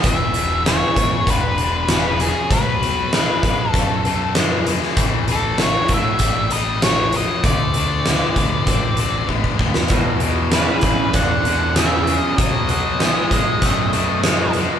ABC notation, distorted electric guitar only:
X:1
M:4/4
L:1/8
Q:1/4=97
K:E
V:1 name="Distorted electric guitar" clef=bass
[E,,B,,] [E,,B,,] [E,,C,] [E,,C,] [E,,=D,] [E,,D,] [E,,C,] [E,,C,] | [B,,F,] [B,,F,] [B,,G,] [B,,G,] [B,,A,] [B,,A,] [B,,G,] [B,,G,] | [A,,E,] [A,,E,] [A,,F,] [A,,F,] [A,,=G,] [A,,G,] [A,,F,] [A,,F,] | [=D,A,] [D,A,] [D,B,] [D,B,] [D,=C] [D,C] [D,B,] [D,B,] |
[E,,B,,] [E,,B,,] [E,,C,] [E,,C,] [E,,=D,] [E,,D,] [E,,C,] [E,,C,] | [B,,F,] [B,,F,] [B,,G,] [B,,G,] [B,,A,] [B,,A,] [B,,G,] [B,,G,] |]